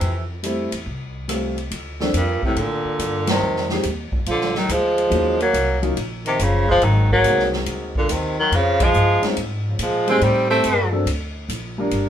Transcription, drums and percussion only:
0.01 ride medium
0.44 hi-hat pedal soft
0.44 ride medium
0.72 ride medium
1.29 cross-stick medium
1.29 hi-hat pedal medium
1.29 ride medium
1.58 ride soft
1.71 ride medium
2.00 snare soft
2.14 hi-hat pedal medium
2.14 ride medium
2.43 kick medium
2.56 ride soft
2.99 hi-hat pedal medium
2.99 ride medium
3.27 snare medium
3.27 ride medium
3.56 snare soft
3.69 snare soft
3.83 hi-hat pedal soft
3.83 ride medium
4.12 kick medium
4.26 ride medium
4.41 snare soft
4.55 snare soft
4.69 hi-hat pedal medium
4.69 ride medium
4.98 ride soft
5.12 ride medium
5.40 ride soft
5.54 hi-hat pedal medium
5.54 ride medium
5.83 ride soft
5.97 ride medium
6.26 ride soft
6.39 hi-hat pedal medium
6.39 ride medium
6.68 kick soft
6.82 ride medium
7.11 kick soft
7.24 hi-hat pedal medium
7.24 ride medium
7.39 snare soft
7.53 snare soft
7.66 ride medium
7.95 kick medium
8.09 hi-hat pedal medium
8.09 ride medium
8.52 ride medium
8.80 kick medium
8.80 ride medium
8.94 hi-hat pedal medium
9.23 snare soft
9.23 ride soft
9.37 ride medium
9.79 hi-hat pedal medium
9.79 ride medium
10.08 ride soft
10.21 ride medium
10.64 hi-hat pedal medium
10.64 ride medium
11.07 ride medium
11.49 hi-hat pedal medium
11.49 ride medium
11.91 ride medium

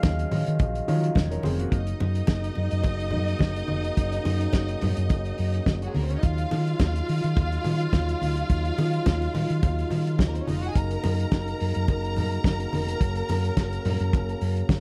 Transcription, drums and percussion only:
0.03 kick loud
0.03 snare loud
0.03 closed hi-hat medium
0.03 high conga medium
0.19 closed hi-hat soft
0.31 open hi-hat medium
0.31 muted conga soft
0.31 low conga medium
0.47 closed hi-hat medium
0.59 kick loud
0.59 closed hi-hat medium
0.59 muted conga medium
0.75 closed hi-hat soft
0.88 open hi-hat medium
1.04 closed hi-hat soft
1.15 kick loud
1.15 snare loud
1.15 closed hi-hat medium
1.15 high conga medium
1.31 closed hi-hat medium
1.43 open hi-hat medium
1.43 high conga medium
1.59 closed hi-hat medium
1.72 kick medium
1.72 closed hi-hat medium
1.87 closed hi-hat soft
2.00 muted conga medium
2.15 closed hi-hat soft
2.27 kick medium
2.27 snare medium
2.27 closed hi-hat medium
2.27 high conga medium
2.44 closed hi-hat soft
2.55 muted conga soft
2.71 closed hi-hat soft
2.83 kick loud
2.83 closed hi-hat soft
2.83 muted conga medium
3.00 closed hi-hat soft
3.11 low conga medium
3.28 closed hi-hat soft
3.39 kick loud
3.39 snare loud
3.39 closed hi-hat medium
3.39 high conga medium
3.56 closed hi-hat soft
3.68 high conga medium
3.84 closed hi-hat soft
3.97 kick medium
3.97 closed hi-hat medium
4.12 closed hi-hat soft
4.25 open hi-hat medium
4.25 muted conga medium
4.41 closed hi-hat soft
4.53 kick loud
4.53 snare loud
4.53 closed hi-hat medium
4.53 high conga medium
4.68 closed hi-hat soft
4.81 open hi-hat medium
4.81 muted conga soft
4.81 low conga medium
4.96 closed hi-hat soft
5.09 kick loud
5.09 closed hi-hat medium
5.09 muted conga soft
5.25 closed hi-hat soft
5.38 open hi-hat medium
5.53 closed hi-hat soft
5.66 kick medium
5.66 snare medium
5.66 closed hi-hat medium
5.66 high conga medium
5.82 closed hi-hat soft
5.95 open hi-hat medium
5.95 high conga medium
6.10 closed hi-hat soft
6.23 kick medium
6.23 closed hi-hat medium
6.38 closed hi-hat soft
6.51 open hi-hat medium
6.51 muted conga medium
6.67 closed hi-hat soft
6.79 kick loud
6.79 snare loud
6.79 closed hi-hat medium
6.79 high conga medium
6.96 closed hi-hat soft
7.09 open hi-hat medium
7.24 closed hi-hat soft
7.37 kick loud
7.37 closed hi-hat medium
7.37 muted conga medium
7.52 closed hi-hat soft
7.64 open hi-hat medium
7.64 low conga medium
7.80 closed hi-hat soft
7.93 kick loud
7.93 snare loud
7.93 closed hi-hat medium
7.93 high conga medium
8.09 closed hi-hat soft
8.22 open hi-hat medium
8.22 high conga medium
8.37 closed hi-hat medium
8.50 kick medium
8.50 closed hi-hat medium
8.65 closed hi-hat soft
8.78 open hi-hat medium
8.78 muted conga medium
8.94 closed hi-hat soft
9.06 kick loud
9.06 snare loud
9.06 closed hi-hat medium
9.06 high conga medium
9.22 closed hi-hat soft
9.35 open hi-hat medium
9.35 muted conga soft
9.35 low conga medium
9.50 closed hi-hat soft
9.63 kick loud
9.63 closed hi-hat medium
9.63 muted conga medium
9.79 closed hi-hat soft
9.90 open hi-hat medium
9.90 low conga medium
10.07 closed hi-hat soft
10.19 kick loud
10.19 snare loud
10.19 closed hi-hat medium
10.19 high conga medium
10.35 closed hi-hat soft
10.47 open hi-hat medium
10.47 high conga medium
10.63 closed hi-hat soft
10.75 kick medium
10.75 closed hi-hat medium
10.91 closed hi-hat soft
11.04 open hi-hat medium
11.04 muted conga medium
11.19 closed hi-hat soft
11.32 kick loud
11.32 snare loud
11.32 closed hi-hat medium
11.32 high conga medium
11.47 closed hi-hat soft
11.60 open hi-hat medium
11.75 closed hi-hat soft
11.88 kick loud
11.88 closed hi-hat medium
11.88 muted conga medium
12.04 closed hi-hat soft
12.17 open hi-hat medium
12.17 low conga medium
12.32 closed hi-hat soft
12.44 kick loud
12.44 snare loud
12.44 closed hi-hat medium
12.44 high conga medium
12.60 closed hi-hat soft
12.73 open hi-hat medium
12.73 high conga medium
12.88 closed hi-hat medium
13.01 kick loud
13.01 closed hi-hat medium
13.15 closed hi-hat soft
13.28 open hi-hat medium
13.28 muted conga medium
13.45 closed hi-hat soft
13.57 kick loud
13.57 snare loud
13.57 closed hi-hat medium
13.57 high conga medium
13.73 closed hi-hat soft
13.85 open hi-hat medium
13.85 low conga medium
14.00 closed hi-hat soft
14.13 kick loud
14.13 closed hi-hat medium
14.13 muted conga medium
14.29 closed hi-hat soft
14.41 open hi-hat medium
14.57 closed hi-hat soft
14.69 kick loud
14.69 snare loud
14.69 closed hi-hat medium
14.69 high conga medium

